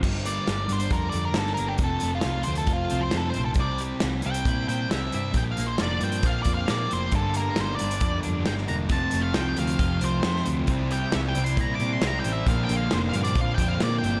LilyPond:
<<
  \new Staff \with { instrumentName = "Lead electric guitar" } { \time 4/4 \key g \dorian \tempo 4 = 135 r8 d''4 c''8 \tuplet 3/2 { bes'8 d''8 bes'8 a'8 bes'8 g'8 } | \tuplet 3/2 { a'4 f'8~ f'8 c''8 a'8 f'4 c''8 a'8 c''8 a'8 } | d''8 r4 g''4 g''8 e''8 e''8 | \tuplet 3/2 { g''8 f''8 c''8 } d''8 g''8 \tuplet 3/2 { f''8 d''8 f''8 } d''8 c''8 |
a'8 bes'8 \tuplet 3/2 { c''8 d''4~ } d''8 r8 g''8 bes''8 | \tuplet 3/2 { a''4 f''8 } g''8 f''4 c''4 r8 | r8 g''8 \tuplet 3/2 { e''8 g''8 c'''8 bes''8 d'''8 c'''8 bes''8 g''8 e''8 } | \tuplet 3/2 { f''8 g''8 f''8 c''8 f''8 d''8 f''8 g''8 f''8 d''8 g''4 } | }
  \new Staff \with { instrumentName = "Clean electric guitar" } { \time 4/4 \key g \dorian r8 bes8 g8 d'8 a'8 d'8 bes8 d'8 | f,8 a8 f8 c'8 f'8 c'8 a8 c'8 | c8 g8 e8 c'8 e'8 c'8 g8 c'8 | bes,8 bes8 d8 c'8 f'8 c'8 bes8 c'8 |
g,8 bes8 g8 d'8 a'8 d'8 bes8 d'8 | f,8 a8 f8 c'8 f'8 c'8 a8 c'8 | c8 g8 e8 c'8 e'8 c'8 g8 c'8 | bes,8 bes8 d8 c'8 f'8 c'8 bes8 c'8 | }
  \new Staff \with { instrumentName = "Distorted electric guitar" } { \clef bass \time 4/4 \key g \dorian r1 | r1 | r1 | r1 |
<g, d g bes d' g'>1 | <f, c f a c' f'>1 | <c g c' e'>1 | <bes, d f bes d'>1 | }
  \new Staff \with { instrumentName = "Distorted electric guitar" } { \clef bass \time 4/4 \key g \dorian <g, d g>4. <g, d g>4. <g, d g>4 | <f, c f>4. <f, c f>4. <f, c f>4 | <c g c'>4. <c g c'>4. <c g c'>4 | <bes, f bes>4. <bes, f bes>4. <bes, f bes>4 |
<g, d g>4. <g, d g>4. <g, d g>4 | <f, c f>4. <f, c f>4. <f, c f>4 | <c g c'>4. <c g c'>4. <c g c'>4 | <bes, f bes>4. <bes, f bes>4. <bes, f bes>4 | }
  \new Staff \with { instrumentName = "Picked electric bass" } { \clef bass \time 4/4 \key g \dorian g,,4 g,,8 g,,8 f,8 f,8 g,,8 g,,8 | f,,8 f,,8 c,8 d,8 f,,8 c,8 f,8 bes,,8 | c,4 c,8 c,8 bes,8 bes,8 c,8 g,8 | bes,,8 bes,,8 f,,8 g,8 bes,,8 f,8 bes,8 f,,8 |
g,,4 g,,8 g,,8 f,8 f,8 g,,8 e,,8 | f,,8 f,,8 c,8 d,8 f,,8 c,8 f,8 d,8 | c,4 c,8 c,8 bes,8 bes,8 c,8 a,,8 | bes,,8 bes,,8 f,,8 g,8 bes,,8 f,8 bes,8 g,,8 | }
  \new DrumStaff \with { instrumentName = "Drums" } \drummode { \time 4/4 <cymc bd>8 hh8 <hh sn>8 hh16 hh16 <hh bd>8 hh8 <hh sn>16 sn16 hh8 | <hh bd>8 hh8 <hh sn>8 hh16 hh16 <hh bd>8 hh8 <hh sn>8 hh8 | <hh bd>8 hh8 <hh sn>8 hh16 hh16 <hh bd>8 hh8 <hh sn>8 hh8 | <hh bd>8 hh8 <hh sn>8 hh16 hh16 <hh bd>8 <hh bd>8 <hh sn>8 hh8 |
<hh bd>8 hh8 <hh sn>8 hh16 hh16 <hh bd>8 hh8 <hh sn>16 sn16 hh8 | <hh bd>8 hh8 <hh sn>8 hh16 hh16 <hh bd>8 hh8 <hh sn>16 sn16 hh8 | <hh bd>8 hh8 <hh sn>8 hh16 hh16 <hh bd>8 hh8 <hh sn>8 hh8 | <hh bd>8 hh8 <hh sn>8 hh16 hh16 <hh bd>8 <hh bd>8 <hh sn>8 hh8 | }
>>